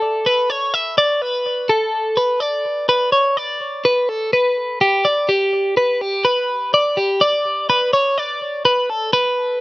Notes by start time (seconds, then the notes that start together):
Already playing: A4
0.26 B4
0.50 C#5
0.74 E5
0.98 D5
1.22 B4
1.69 A4
2.17 B4
2.40 D5
2.89 B4
3.12 C#5
3.37 D5
3.85 B4
4.09 A4
4.33 B4
4.81 G4
5.05 D5
5.29 G4
5.77 B4
6.01 G4
6.25 B4
6.74 D5
6.97 G4
7.21 D5
7.70 B4
7.93 C#5
8.18 D5
8.65 B4
8.90 A4
9.13 B4